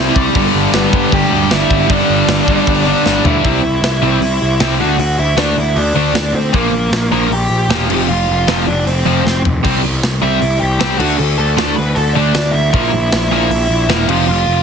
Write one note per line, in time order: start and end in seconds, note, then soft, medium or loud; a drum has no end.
0.00 0.15 C3 medium
0.00 0.35 C3 medium
0.00 0.37 G3 medium
0.00 0.13 C4 medium
0.00 0.34 C4 medium
0.00 0.12 E4 medium
0.00 0.13 E5 medium
0.16 0.28 C2 loud
0.16 kick medium
0.33 0.47 G1 loud
0.33 1.30 G2 medium
0.33 1.31 D3 loud
0.33 1.30 G3 loud
0.33 kick loud
0.33 open hi-hat medium
0.54 0.66 G1 medium
0.74 0.86 G1 loud
0.74 1.10 B3 medium
0.74 1.10 B4 loud
0.74 snare loud
0.91 1.05 G1 medium
0.91 1.87 G2 medium
0.91 1.89 D3 medium
0.91 1.91 G3 medium
0.91 kick medium
1.12 1.24 G1 loud
1.12 1.49 G4 medium
1.12 1.51 G5 loud
1.12 kick loud
1.12 open hi-hat medium
1.31 1.44 D2 medium
1.31 1.49 G2 medium
1.31 1.50 D3 medium
1.31 1.53 G3 medium
1.50 1.63 G1 loud
1.50 1.87 G2 medium
1.50 1.89 D3 medium
1.50 1.91 G3 medium
1.50 1.87 E4 medium
1.50 1.91 E5 loud
1.50 snare loud
1.50 open hi-hat medium
1.70 1.82 G1 loud
1.70 kick medium
1.88 2.02 G1 loud
1.88 2.84 G2 loud
1.88 2.85 D3 medium
1.88 2.84 G3 loud
1.88 2.85 D4 medium
1.88 2.87 D5 loud
1.88 kick loud
1.88 open hi-hat medium
2.10 2.21 G1 medium
2.28 2.40 G1 loud
2.28 snare loud
2.28 open hi-hat medium
2.46 2.59 G1 medium
2.46 3.44 G2 medium
2.46 3.43 D3 medium
2.46 3.42 G3 medium
2.46 kick medium
2.67 2.91 G1 loud
2.67 kick loud
2.67 open hi-hat medium
2.85 3.03 G2 medium
2.85 3.05 D3 medium
2.85 3.04 G3 medium
2.85 3.22 D4 medium
2.85 3.23 D5 medium
3.04 3.18 G1 medium
3.04 3.42 G2 medium
3.04 3.43 D3 medium
3.04 3.43 G3 medium
3.04 snare medium
3.24 3.36 D2 loud
3.24 3.43 E4 medium
3.24 3.46 E5 medium
3.24 floor tom loud
3.43 3.61 C2 loud
3.43 3.59 C3 medium
3.43 3.60 G3 medium
3.43 3.60 C4 medium
3.43 3.99 E4 medium
3.43 4.03 E5 medium
3.43 kick loud
3.43 open hi-hat medium
3.63 3.80 C2 medium
3.82 3.99 C2 medium
3.82 snare loud
3.82 open hi-hat medium
4.02 4.19 C2 medium
4.02 4.18 C3 medium
4.02 4.18 G3 loud
4.02 4.18 C4 loud
4.02 4.76 E4 medium
4.02 4.77 E5 loud
4.21 4.38 C2 loud
4.21 open hi-hat medium
4.42 4.58 C2 medium
4.60 4.77 C2 medium
4.60 4.76 C3 loud
4.60 4.76 G3 loud
4.60 4.77 C4 loud
4.60 snare loud
4.60 open hi-hat medium
4.80 4.97 D2 loud
4.80 4.95 D3 medium
4.80 4.96 A3 medium
4.80 4.96 D4 loud
4.80 4.98 F#4 medium
4.80 4.99 F#5 medium
4.98 5.15 D2 loud
4.98 5.17 F#4 medium
4.98 5.19 F#5 loud
4.98 open hi-hat medium
5.19 5.35 D2 medium
5.19 5.37 E4 medium
5.19 5.37 E5 medium
5.37 5.54 D2 medium
5.37 5.53 D3 loud
5.37 5.53 A3 loud
5.37 5.56 D4 medium
5.37 5.54 D4 loud
5.37 5.58 D5 medium
5.37 snare loud
5.37 open hi-hat medium
5.57 5.73 D2 medium
5.57 5.76 E4 medium
5.57 5.76 E5 loud
5.76 5.93 D2 loud
5.76 6.31 D4 medium
5.76 6.35 D5 medium
5.76 open hi-hat medium
5.94 6.11 D2 medium
5.94 6.12 D3 medium
5.94 6.12 A3 loud
5.94 6.12 D4 medium
6.14 6.31 D2 medium
6.14 snare loud
6.14 open hi-hat medium
6.33 6.50 D2 loud
6.33 6.53 C4 medium
6.33 6.55 C5 medium
6.53 6.70 A#1 loud
6.53 6.69 A#2 medium
6.53 6.70 F3 loud
6.53 6.70 A#3 loud
6.53 7.09 A#3 medium
6.53 7.09 A#4 medium
6.53 kick loud
6.53 open hi-hat medium
6.71 6.89 A#1 medium
6.91 7.08 A#1 loud
6.91 snare loud
6.91 open hi-hat medium
7.11 7.28 A#1 medium
7.11 7.28 A#2 loud
7.11 7.28 F3 loud
7.11 7.28 A#3 loud
7.11 7.30 A#4 medium
7.11 7.30 A#5 loud
7.30 7.47 A#1 medium
7.30 8.06 G4 medium
7.30 8.06 G5 loud
7.30 open hi-hat medium
7.50 7.67 A#1 medium
7.68 7.89 E1 medium
7.68 7.86 A#2 medium
7.68 7.86 F3 loud
7.68 7.87 A#3 medium
7.68 snare loud
7.68 open hi-hat medium
7.89 8.06 F1 medium
7.89 8.05 F2 loud
7.89 8.06 C3 loud
7.89 8.06 F3 loud
7.89 crash loud
8.08 8.25 F1 medium
8.08 8.63 F4 medium
8.08 8.63 F5 loud
8.28 8.45 F1 medium
8.48 8.65 F1 loud
8.48 8.63 F2 medium
8.48 8.64 C3 loud
8.48 8.64 F3 loud
8.48 snare loud
8.48 open hi-hat medium
8.67 8.84 F1 medium
8.67 8.86 D4 medium
8.67 8.86 D5 loud
8.87 9.03 F1 loud
8.87 9.41 C4 medium
8.87 9.41 C5 medium
8.87 open hi-hat medium
9.06 9.23 F1 medium
9.06 9.21 F2 medium
9.06 9.22 C3 medium
9.06 9.22 F3 loud
9.25 9.41 F1 medium
9.25 snare medium
9.44 9.61 F1 loud
9.44 floor tom medium
9.64 9.81 C2 loud
9.64 9.80 C3 medium
9.64 9.80 G3 medium
9.64 9.80 C4 loud
9.64 kick loud
9.64 crash medium
9.84 10.00 C2 medium
10.03 10.19 C2 medium
10.03 snare loud
10.03 open hi-hat medium
10.22 10.38 C2 medium
10.22 10.38 C3 medium
10.22 10.38 G3 medium
10.22 10.38 C4 loud
10.22 10.39 E4 medium
10.22 10.39 E5 loud
10.40 10.58 C2 loud
10.40 10.59 E4 medium
10.40 10.59 E5 loud
10.40 open hi-hat medium
10.60 10.78 C2 medium
10.60 10.97 G4 medium
10.60 10.97 G5 loud
10.79 10.97 C2 medium
10.79 10.95 C3 medium
10.79 10.96 G3 medium
10.79 10.96 C4 loud
10.79 snare loud
10.79 open hi-hat medium
10.98 11.16 D2 loud
10.98 11.15 D3 loud
10.98 11.15 A3 loud
10.98 11.15 D4 loud
10.98 11.17 F#4 medium
10.98 11.18 F#5 medium
10.98 crash loud
11.18 11.36 D2 loud
11.18 11.37 A4 medium
11.18 11.37 A5 loud
11.38 11.55 D2 medium
11.38 11.75 A4 medium
11.38 11.74 A5 loud
11.57 11.75 D2 loud
11.57 11.73 D3 loud
11.57 11.73 A3 loud
11.57 11.74 D4 loud
11.57 snare loud
11.57 open hi-hat medium
11.76 11.94 D2 medium
11.76 11.96 B4 medium
11.76 11.95 B5 loud
11.95 12.13 D2 loud
11.95 12.15 A4 medium
11.95 12.15 A5 loud
11.95 open hi-hat medium
12.13 12.33 D2 medium
12.13 12.31 D3 medium
12.13 12.31 A3 loud
12.13 12.52 D4 medium
12.13 12.32 D4 medium
12.13 12.54 D5 loud
12.35 12.51 D2 medium
12.35 snare loud
12.35 open hi-hat medium
12.51 12.70 D2 loud
12.51 12.71 E4 medium
12.51 12.69 E5 medium
12.71 12.90 A#1 loud
12.71 12.89 A#2 medium
12.71 12.89 F3 loud
12.71 13.27 E4 medium
12.71 13.28 E5 loud
12.71 kick loud
12.71 open hi-hat medium
12.75 12.90 A#3 loud
12.94 13.10 A#1 medium
13.12 13.29 A#1 medium
13.12 snare loud
13.12 open hi-hat medium
13.29 13.48 A#1 medium
13.29 13.47 A#2 medium
13.29 13.47 F3 medium
13.29 13.48 A#3 loud
13.29 14.05 E4 medium
13.29 14.08 E5 loud
13.50 13.67 A#1 loud
13.50 open hi-hat medium
13.69 13.86 A#1 medium
13.88 14.05 E1 medium
13.88 14.05 A#2 medium
13.88 14.05 F3 medium
13.88 14.05 A#3 loud
13.88 snare loud
13.88 open hi-hat medium
14.07 14.24 F1 loud
14.07 14.24 F2 medium
14.07 14.24 C3 loud
14.07 14.25 F3 loud
14.07 14.27 F4 medium
14.07 14.27 F5 medium
14.07 crash loud
14.28 14.44 F1 loud
14.28 14.63 F4 medium
14.28 14.63 F5 loud
14.47 14.63 F1 medium